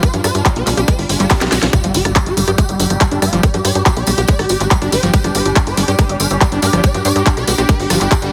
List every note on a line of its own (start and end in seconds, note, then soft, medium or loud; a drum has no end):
0.00 1.72 G3 medium
0.00 1.75 F4 medium
0.00 0.10 C5 loud
0.00 kick loud
0.00 closed hi-hat medium
0.00 tambourine soft
0.14 0.21 G2 medium
0.14 0.17 F3 medium
0.14 0.20 D4 medium
0.14 closed hi-hat medium
0.14 tambourine soft
0.24 0.31 G2 loud
0.24 0.31 C5 medium
0.24 cross-stick medium
0.24 open hi-hat medium
0.24 tambourine loud
0.35 0.42 G2 medium
0.35 0.42 D4 medium
0.35 closed hi-hat medium
0.35 tambourine soft
0.45 0.49 G3 medium
0.45 0.52 D4 medium
0.45 kick loud
0.45 clap loud
0.45 closed hi-hat medium
0.45 tambourine medium
0.55 0.63 B1 medium
0.55 0.63 C5 medium
0.55 closed hi-hat medium
0.55 tambourine soft
0.67 0.74 B1 loud
0.67 0.70 G3 medium
0.67 0.74 D4 medium
0.67 clap soft
0.67 open hi-hat loud
0.67 tambourine medium
0.77 0.84 B1 medium
0.77 0.84 D4 medium
0.77 0.81 G4 loud
0.77 closed hi-hat medium
0.77 tambourine soft
0.88 0.94 G#3 medium
0.88 0.95 C5 medium
0.88 kick loud
0.88 cross-stick soft
0.88 closed hi-hat medium
0.88 tambourine soft
0.88 swell medium
0.99 1.06 G1 medium
0.99 1.06 D4 medium
0.99 open hi-hat medium
0.99 tambourine soft
1.09 1.16 G1 loud
1.09 1.16 D4 medium
1.09 open hi-hat loud
1.09 tambourine medium
1.20 1.27 G1 loud
1.20 1.26 G3 loud
1.20 1.27 D4 medium
1.20 clap soft
1.20 closed hi-hat medium
1.20 tambourine soft
1.30 1.34 G3 medium
1.30 kick loud
1.30 snare medium
1.30 clap loud
1.30 closed hi-hat medium
1.30 tambourine soft
1.40 1.48 B1 medium
1.40 1.48 D4 medium
1.40 1.45 G4 medium
1.40 snare medium
1.40 closed hi-hat medium
1.40 tambourine soft
1.40 zap medium
1.52 1.59 B1 loud
1.52 1.55 G#3 medium
1.52 1.59 G4 medium
1.52 snare medium
1.52 open hi-hat loud
1.52 tambourine medium
1.62 1.70 B1 loud
1.62 1.66 F3 medium
1.62 1.69 D4 medium
1.62 snare medium
1.62 closed hi-hat medium
1.62 tambourine soft
1.73 1.79 G3 medium
1.73 8.32 G3 medium
1.73 8.32 D4 medium
1.73 1.80 G4 loud
1.73 8.32 G4 medium
1.73 kick loud
1.73 cross-stick soft
1.73 closed hi-hat medium
1.73 tambourine medium
1.73 impact medium
1.83 1.91 G1 medium
1.83 1.87 F3 medium
1.83 1.91 G3 medium
1.83 closed hi-hat medium
1.83 tambourine soft
1.94 2.02 G1 loud
1.94 2.01 G4 loud
1.94 open hi-hat loud
1.94 tambourine loud
2.00 8.32 G4 medium
2.05 2.12 G1 medium
2.05 2.12 G3 medium
2.05 8.32 D6 medium
2.05 cross-stick medium
2.05 closed hi-hat medium
2.05 tambourine soft
2.16 2.19 G3 medium
2.16 2.23 G3 medium
2.16 kick loud
2.16 clap loud
2.16 closed hi-hat medium
2.16 tambourine medium
2.26 2.33 G1 medium
2.26 2.33 G4 loud
2.26 closed hi-hat medium
2.26 tambourine soft
2.37 2.44 G1 loud
2.37 2.40 G3 medium
2.37 2.44 G3 medium
2.37 8.32 G5 loud
2.37 open hi-hat loud
2.37 tambourine medium
2.48 2.55 G2 medium
2.48 2.55 G3 medium
2.48 2.51 G4 loud
2.48 cross-stick soft
2.48 closed hi-hat medium
2.48 tambourine soft
2.58 2.64 G#3 medium
2.58 2.65 G4 medium
2.58 kick loud
2.58 closed hi-hat medium
2.58 tambourine medium
2.69 2.76 G1 medium
2.69 2.76 G3 medium
2.69 closed hi-hat medium
2.69 tambourine soft
2.80 2.87 G1 loud
2.80 2.86 G3 medium
2.80 open hi-hat loud
2.80 tambourine loud
2.90 2.97 G1 loud
2.90 2.97 G3 medium
2.90 cross-stick soft
2.90 closed hi-hat medium
2.90 tambourine soft
3.01 3.07 G3 medium
3.01 kick loud
3.01 clap loud
3.01 closed hi-hat medium
3.01 tambourine medium
3.11 3.19 G1 medium
3.11 3.18 G3 medium
3.11 3.20 D4 medium
3.11 closed hi-hat medium
3.11 tambourine soft
3.22 3.29 G2 loud
3.22 3.26 G3 medium
3.22 3.29 F4 medium
3.22 cross-stick medium
3.22 open hi-hat loud
3.22 tambourine loud
3.33 3.40 G1 loud
3.33 3.41 F3 loud
3.33 3.40 G3 medium
3.33 closed hi-hat medium
3.33 tambourine soft
3.43 3.49 G3 medium
3.43 3.50 D5 loud
3.43 kick loud
3.43 closed hi-hat medium
3.43 tambourine medium
3.54 3.61 G2 medium
3.54 3.58 F3 medium
3.54 3.61 G4 medium
3.54 closed hi-hat medium
3.54 tambourine soft
3.65 3.72 G2 loud
3.65 3.72 D5 loud
3.65 cross-stick soft
3.65 open hi-hat loud
3.65 tambourine medium
3.75 3.82 G2 medium
3.75 3.82 G4 medium
3.75 closed hi-hat medium
3.75 tambourine soft
3.86 3.89 G3 medium
3.86 3.93 G4 medium
3.86 kick loud
3.86 clap loud
3.86 closed hi-hat medium
3.86 tambourine medium
3.97 4.04 B1 medium
3.97 4.03 D5 loud
3.97 closed hi-hat medium
3.97 tambourine soft
4.07 4.14 B1 loud
4.07 4.11 G3 medium
4.07 4.14 G4 medium
4.07 cross-stick soft
4.07 open hi-hat loud
4.07 tambourine loud
4.18 4.25 B1 medium
4.18 4.21 G4 loud
4.18 4.25 G4 medium
4.18 closed hi-hat medium
4.18 tambourine soft
4.28 4.34 G#3 medium
4.28 4.35 D5 medium
4.28 kick loud
4.28 closed hi-hat medium
4.28 tambourine medium
4.39 4.46 G#1 medium
4.39 4.46 G4 medium
4.39 cross-stick medium
4.39 open hi-hat medium
4.39 tambourine soft
4.49 4.57 G#1 medium
4.49 4.57 G4 medium
4.49 open hi-hat loud
4.49 tambourine medium
4.60 4.67 G#1 medium
4.60 4.67 G4 medium
4.60 clap soft
4.60 closed hi-hat medium
4.60 tambourine soft
4.71 4.77 G3 medium
4.71 kick loud
4.71 clap loud
4.71 closed hi-hat medium
4.71 tambourine medium
4.82 4.89 G1 medium
4.82 4.90 D4 medium
4.82 4.89 G4 medium
4.82 cross-stick soft
4.82 closed hi-hat medium
4.82 tambourine soft
4.92 4.99 G1 loud
4.92 4.96 G3 medium
4.92 4.99 C5 medium
4.92 open hi-hat loud
4.92 tambourine loud
5.03 5.10 G1 loud
5.03 5.12 F3 loud
5.03 5.10 G4 medium
5.03 closed hi-hat medium
5.03 tambourine soft
5.13 5.19 G3 medium
5.13 5.20 C5 loud
5.13 kick loud
5.13 closed hi-hat medium
5.13 tambourine medium
5.24 5.31 G1 medium
5.24 5.28 F3 medium
5.24 5.31 D4 medium
5.24 cross-stick soft
5.24 closed hi-hat medium
5.24 tambourine soft
5.35 5.42 G1 loud
5.35 5.42 C5 loud
5.35 open hi-hat loud
5.35 tambourine medium
5.45 5.53 G1 medium
5.45 5.52 D4 medium
5.45 closed hi-hat medium
5.45 tambourine soft
5.56 5.60 G3 medium
5.56 5.63 D4 medium
5.56 kick loud
5.56 cross-stick medium
5.56 clap loud
5.56 closed hi-hat medium
5.56 tambourine medium
5.67 5.74 G1 medium
5.67 5.74 C5 loud
5.67 closed hi-hat medium
5.67 tambourine soft
5.77 5.85 G1 loud
5.77 5.81 G3 medium
5.77 5.84 D4 medium
5.77 open hi-hat loud
5.77 tambourine medium
5.88 5.95 G2 medium
5.88 5.95 D4 medium
5.88 5.92 G4 loud
5.88 closed hi-hat medium
5.88 tambourine soft
5.99 6.05 G#3 medium
5.99 6.06 C5 loud
5.99 kick loud
5.99 cross-stick soft
5.99 closed hi-hat medium
5.99 tambourine medium
6.09 6.16 G1 medium
6.09 6.16 D4 medium
6.09 closed hi-hat medium
6.09 tambourine soft
6.20 6.27 G1 loud
6.20 6.27 D4 medium
6.20 open hi-hat loud
6.20 tambourine loud
6.30 6.38 G1 medium
6.30 6.37 D4 medium
6.30 closed hi-hat soft
6.30 tambourine soft
6.41 6.47 G3 medium
6.41 kick loud
6.41 cross-stick soft
6.41 clap loud
6.41 closed hi-hat medium
6.41 tambourine medium
6.52 6.59 G1 medium
6.52 6.59 D4 medium
6.52 6.61 D4 medium
6.52 closed hi-hat medium
6.52 tambourine soft
6.62 6.70 G2 loud
6.62 6.66 G3 medium
6.62 6.69 B4 medium
6.62 open hi-hat loud
6.62 tambourine loud
6.73 6.80 G1 loud
6.73 6.82 F3 loud
6.73 6.80 D4 medium
6.73 cross-stick medium
6.73 closed hi-hat medium
6.73 tambourine soft
6.83 6.90 G3 medium
6.83 6.91 D5 loud
6.83 kick loud
6.83 closed hi-hat medium
6.83 tambourine medium
6.94 7.02 G2 medium
6.94 6.98 F3 medium
6.94 7.01 G4 medium
6.94 closed hi-hat medium
6.94 tambourine soft
7.05 7.12 G2 loud
7.05 7.12 D5 loud
7.05 open hi-hat loud
7.05 tambourine loud
7.16 7.23 G2 medium
7.16 7.23 G4 medium
7.16 cross-stick soft
7.16 closed hi-hat medium
7.16 tambourine soft
7.26 7.30 G3 medium
7.26 7.33 G4 medium
7.26 kick loud
7.26 clap loud
7.26 closed hi-hat medium
7.26 tambourine soft
7.37 7.44 B1 medium
7.37 7.44 D5 loud
7.37 closed hi-hat soft
7.37 tambourine soft
7.47 7.55 B1 loud
7.47 7.51 G3 medium
7.47 7.54 G4 medium
7.47 open hi-hat loud
7.47 tambourine loud
7.58 7.65 B1 medium
7.58 7.65 G4 medium
7.58 7.62 G4 loud
7.58 cross-stick soft
7.58 closed hi-hat soft
7.58 tambourine soft
7.69 7.75 G#3 medium
7.69 7.76 B4 medium
7.69 kick loud
7.69 closed hi-hat medium
7.69 tambourine soft
7.79 7.87 G#1 medium
7.79 7.86 G4 medium
7.79 open hi-hat medium
7.79 tambourine soft
7.90 7.97 G1 loud
7.90 7.99 F3 medium
7.90 7.97 G4 medium
7.90 cross-stick medium
7.90 open hi-hat loud
7.90 tambourine loud
8.01 8.08 G1 loud
8.01 8.08 G4 medium
8.01 clap soft
8.01 closed hi-hat medium
8.01 tambourine soft
8.11 8.15 G4 medium
8.11 kick loud
8.11 clap loud
8.11 closed hi-hat medium
8.11 tambourine medium
8.22 8.29 G1 medium
8.22 8.31 G3 medium
8.22 8.29 G4 medium
8.22 closed hi-hat soft
8.22 tambourine soft